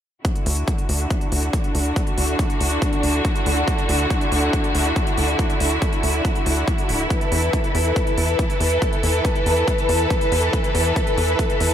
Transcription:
0.25 7.06 D3 medium
0.25 7.06 D4 medium
0.25 11.74 E4 medium
0.25 7.06 F#4 medium
0.25 kick loud
0.25 closed hi-hat medium
0.36 closed hi-hat soft
0.46 0.64 D2 loud
0.46 open hi-hat loud
0.57 closed hi-hat soft
0.68 kick loud
0.68 closed hi-hat medium
0.78 closed hi-hat soft
0.89 1.07 D2 medium
0.89 open hi-hat medium
1.00 closed hi-hat soft
1.10 kick loud
1.10 closed hi-hat medium
1.21 closed hi-hat soft
1.32 1.50 D2 medium
1.32 open hi-hat loud
1.43 closed hi-hat soft
1.53 kick loud
1.53 closed hi-hat medium
1.64 closed hi-hat soft
1.75 1.93 D2 loud
1.75 open hi-hat medium
1.85 closed hi-hat soft
1.96 kick loud
1.96 closed hi-hat medium
2.07 closed hi-hat soft
2.18 2.36 D2 medium
2.18 open hi-hat loud
2.28 closed hi-hat soft
2.39 kick loud
2.39 closed hi-hat medium
2.50 closed hi-hat soft
2.60 2.78 D2 medium
2.60 open hi-hat medium
2.71 closed hi-hat soft
2.82 kick loud
2.82 closed hi-hat medium
2.93 closed hi-hat soft
3.03 3.21 D2 medium
3.03 open hi-hat loud
3.14 closed hi-hat soft
3.25 kick loud
3.25 closed hi-hat medium
3.35 closed hi-hat soft
3.46 3.64 D2 loud
3.46 open hi-hat medium
3.57 closed hi-hat soft
3.68 kick loud
3.68 closed hi-hat medium
3.78 closed hi-hat soft
3.89 4.07 D2 loud
3.89 open hi-hat loud
4.00 closed hi-hat soft
4.10 kick loud
4.10 closed hi-hat medium
4.21 closed hi-hat soft
4.32 4.50 D2 medium
4.32 open hi-hat medium
4.53 kick loud
4.53 closed hi-hat medium
4.64 closed hi-hat soft
4.75 4.93 D2 medium
4.75 open hi-hat loud
4.85 closed hi-hat soft
4.96 kick loud
4.96 closed hi-hat medium
5.07 closed hi-hat soft
5.18 5.36 D2 loud
5.18 open hi-hat medium
5.28 closed hi-hat soft
5.39 kick loud
5.39 closed hi-hat medium
5.50 closed hi-hat soft
5.60 5.78 D2 loud
5.60 open hi-hat loud
5.71 closed hi-hat soft
5.82 kick loud
5.82 closed hi-hat medium
5.93 closed hi-hat soft
6.03 6.21 D2 medium
6.03 open hi-hat loud
6.14 closed hi-hat soft
6.25 kick loud
6.25 closed hi-hat medium
6.35 closed hi-hat soft
6.46 6.64 D2 medium
6.46 open hi-hat loud
6.57 closed hi-hat soft
6.68 kick loud
6.68 closed hi-hat medium
6.78 closed hi-hat soft
6.89 7.07 D1 medium
6.89 open hi-hat medium
7.00 closed hi-hat soft
7.10 11.74 E3 medium
7.10 11.74 A4 medium
7.10 11.74 B4 medium
7.10 kick loud
7.10 closed hi-hat medium
7.21 closed hi-hat soft
7.32 7.50 E2 loud
7.32 open hi-hat loud
7.43 closed hi-hat soft
7.53 kick loud
7.53 closed hi-hat medium
7.64 closed hi-hat soft
7.75 7.93 E2 medium
7.75 open hi-hat medium
7.85 closed hi-hat soft
7.96 kick loud
7.96 closed hi-hat medium
8.07 closed hi-hat soft
8.18 8.36 E2 medium
8.18 open hi-hat loud
8.28 closed hi-hat soft
8.39 kick loud
8.39 closed hi-hat medium
8.50 closed hi-hat soft
8.60 8.78 E2 loud
8.60 open hi-hat medium
8.71 closed hi-hat soft
8.82 kick loud
8.82 closed hi-hat medium
8.93 closed hi-hat soft
9.03 9.21 E2 loud
9.03 open hi-hat loud
9.14 closed hi-hat soft
9.25 kick loud
9.25 closed hi-hat medium
9.35 closed hi-hat soft
9.46 9.64 E2 loud
9.46 open hi-hat medium
9.57 closed hi-hat soft
9.68 kick loud
9.68 closed hi-hat medium
9.78 closed hi-hat soft
9.89 10.07 E2 medium
9.89 open hi-hat loud
10.10 kick loud
10.10 closed hi-hat medium
10.21 closed hi-hat soft
10.32 10.50 E2 loud
10.32 open hi-hat medium
10.43 closed hi-hat soft
10.53 kick loud
10.53 closed hi-hat medium
10.64 closed hi-hat soft
10.75 10.93 E2 loud
10.75 open hi-hat loud
10.85 closed hi-hat soft
10.96 kick loud
10.96 closed hi-hat medium
11.07 closed hi-hat soft
11.18 11.36 E2 medium
11.18 open hi-hat medium
11.28 closed hi-hat soft
11.39 kick loud
11.39 closed hi-hat medium
11.50 closed hi-hat soft
11.60 11.74 E2 medium
11.60 open hi-hat loud

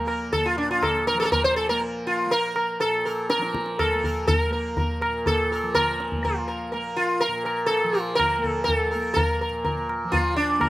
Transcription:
0.00 0.57 A#2 medium
0.00 1.13 F3 medium
0.00 1.70 A#3 medium
0.07 0.30 A#4 soft
0.07 tabla na medium
0.33 0.45 A4 medium
0.33 tabla tin medium
0.33 tabla ge medium
0.46 0.57 F4 medium
0.57 2.83 A#2 medium
0.57 0.70 D4 medium
0.71 0.83 F4 medium
0.83 1.07 A4 medium
0.83 tabla na medium
0.83 tabla ge medium
1.07 1.19 A#4 medium
1.07 tabla te medium
1.14 3.38 F3 medium
1.20 1.23 A4 medium
1.20 1.25 A#4 medium
1.25 1.32 A4 medium
1.32 1.43 A#4 medium
1.32 tabla tin medium
1.32 tabla ge medium
1.44 1.56 C5 medium
1.56 1.69 A4 medium
1.69 2.26 A#3 medium
1.69 1.80 A#4 medium
1.82 tabla tin medium
2.07 2.32 F4 medium
2.26 3.94 A#3 medium
2.31 2.55 A#4 medium
2.31 tabla tin medium
2.56 2.79 A#4 soft
2.56 tabla na medium
2.80 5.05 A#2 medium
2.80 3.29 A4 medium
2.80 tabla tin medium
3.05 3.28 A#4 soft
3.30 3.79 A#4 medium
3.30 tabla te medium
3.38 5.62 F3 soft
3.42 tabla te medium
3.54 tabla ke medium
3.66 tabla te medium
3.79 4.27 A4 medium
3.79 tabla na medium
3.79 tabla ge medium
3.94 4.51 A#3 medium
4.04 4.26 A#4 soft
4.04 tabla ge soft
4.27 4.51 A#4 medium
4.27 tabla tin medium
4.27 tabla ge medium
4.51 6.18 A#3 medium
4.51 4.75 A#4 soft
4.77 5.00 A#4 soft
4.77 tabla tin medium
4.77 tabla ge medium
5.01 5.24 A#4 soft
5.01 tabla na medium
5.06 7.28 A#2 soft
5.26 5.74 A4 medium
5.26 tabla tin medium
5.26 tabla ge medium
5.52 5.73 A#4 soft
5.62 7.83 F3 soft
5.75 6.25 A#4 loud
5.75 tabla na medium
5.75 tabla ge medium
6.00 tabla te medium
6.12 tabla ge soft
6.18 6.73 A#3 medium
6.25 6.70 F4 medium
6.25 tabla tin medium
6.25 tabla ge medium
6.48 6.71 A#4 soft
6.72 8.38 A#3 medium
6.72 6.95 A#4 soft
6.72 tabla tin medium
6.96 7.22 F4 medium
7.20 7.44 A#4 medium
7.20 tabla tin medium
7.28 9.49 A#2 medium
7.45 7.66 A#4 soft
7.45 tabla na medium
7.66 8.02 A4 medium
7.71 tabla tin medium
7.84 10.04 F3 medium
7.93 8.14 A#4 soft
8.02 8.15 F4 medium
8.15 8.45 A#4 medium
8.20 tabla na medium
8.20 tabla ge medium
8.38 8.95 A#3 medium
8.44 8.64 A4 medium
8.44 tabla ge medium
8.64 8.75 A#4 medium
8.68 tabla tin medium
8.68 tabla ge medium
8.75 9.13 A4 medium
8.91 9.13 A#4 soft
8.95 10.59 A#3 medium
9.14 9.40 A#4 medium
9.14 tabla tin loud
9.14 tabla ge medium
9.41 9.63 A#4 soft
9.49 10.69 A#2 medium
9.65 9.87 A#4 soft
9.65 tabla tin medium
9.65 tabla ge medium
9.89 tabla na medium
10.04 10.69 F3 medium
10.12 10.36 F4 medium
10.12 tabla tin medium
10.12 tabla ge medium
10.36 10.69 D4 medium
10.59 10.69 A#3 medium
10.59 10.69 A#4 soft
10.59 tabla na medium
10.59 tabla ge medium

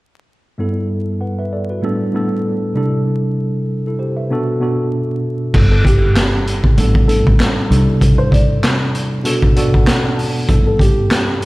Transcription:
0.58 1.76 G2 medium
0.58 1.76 G3 medium
0.58 1.77 B3 medium
0.58 1.77 E4 medium
0.58 1.22 A4 medium
1.21 1.38 B4 medium
1.21 1.37 F#5 medium
1.39 1.52 B4 medium
1.39 1.51 E5 medium
1.53 1.69 A4 medium
1.53 1.69 D5 medium
1.70 1.99 F#4 medium
1.70 1.99 B4 medium
1.82 2.12 A2 medium
1.82 2.12 G3 medium
1.82 2.12 B3 medium
1.82 2.13 D4 medium
1.82 2.13 A4 loud
2.13 2.75 A2 medium
2.13 2.74 G3 medium
2.13 2.76 B3 medium
2.13 2.74 D4 medium
2.13 2.76 A4 loud
2.74 3.92 C3 medium
2.74 3.93 G3 medium
2.74 3.93 D4 medium
2.74 3.38 E4 medium
2.74 3.38 A4 medium
3.87 4.00 E4 medium
3.87 3.99 A4 medium
3.99 4.16 G4 medium
3.99 4.16 C5 medium
4.16 4.46 B4 soft
4.16 4.46 E5 medium
4.30 4.59 B2 medium
4.30 4.60 B3 medium
4.30 4.60 D4 medium
4.30 4.60 F#4 medium
4.30 4.61 A4 loud
4.60 5.49 B2 medium
4.60 5.49 B3 medium
4.60 5.49 D4 medium
4.60 5.50 F#4 medium
4.60 5.50 A4 medium
5.53 6.74 G1 loud
5.53 6.71 G2 medium
5.53 6.71 G3 medium
5.53 6.72 B3 medium
5.53 6.72 E4 medium
5.53 6.72 A4 medium
5.53 kick loud
5.53 crash medium
5.71 5.83 A4 medium
5.85 6.74 G4 medium
5.85 kick medium
5.85 closed hi-hat medium
6.16 snare loud
6.16 clap medium
6.16 closed hi-hat medium
6.47 closed hi-hat medium
6.64 kick medium
6.77 7.21 A1 loud
6.77 7.05 A2 medium
6.77 7.05 G3 medium
6.77 7.06 B3 medium
6.77 7.07 D4 medium
6.77 7.07 A4 loud
6.77 closed hi-hat medium
6.95 kick medium
7.06 7.69 A2 medium
7.06 7.69 G3 medium
7.06 7.70 B3 medium
7.06 7.70 D4 medium
7.06 7.24 A4 medium
7.06 7.70 A4 medium
7.06 closed hi-hat medium
7.27 7.39 A1 medium
7.27 kick medium
7.40 snare loud
7.40 clap medium
7.40 closed hi-hat medium
7.70 7.86 C2 medium
7.70 8.87 C3 medium
7.70 8.88 G3 medium
7.70 8.88 D4 medium
7.70 7.78 D#4 medium
7.70 8.89 A4 medium
7.70 closed hi-hat medium
7.78 8.92 E4 medium
8.01 kick loud
8.01 closed hi-hat loud
8.18 8.31 C5 medium
8.31 10.00 D5 medium
8.31 kick medium
8.31 closed hi-hat medium
8.63 snare loud
8.63 clap medium
8.63 closed hi-hat medium
8.95 closed hi-hat medium
9.23 9.54 B2 medium
9.23 9.54 B3 medium
9.23 9.54 D4 loud
9.23 9.55 F#4 medium
9.23 9.55 A4 loud
9.23 closed hi-hat medium
9.42 kick medium
9.56 10.44 B2 medium
9.56 10.44 B3 medium
9.56 10.45 D4 medium
9.56 10.45 F#4 medium
9.56 10.45 A4 loud
9.56 9.73 D5 medium
9.56 closed hi-hat medium
9.73 9.85 F#5 medium
9.73 kick medium
9.87 10.16 F#5 medium
9.87 snare loud
9.87 clap medium
9.87 closed hi-hat loud
10.18 10.47 A5 medium
10.18 open hi-hat soft
10.48 11.45 G2 medium
10.48 11.45 G3 medium
10.48 11.45 B3 medium
10.48 11.45 E4 medium
10.48 11.45 A4 medium
10.48 kick loud
10.48 closed hi-hat loud
10.67 10.79 A4 medium
10.79 11.45 G4 medium
10.79 kick medium
10.79 closed hi-hat medium
11.11 snare loud
11.11 clap medium
11.11 closed hi-hat medium

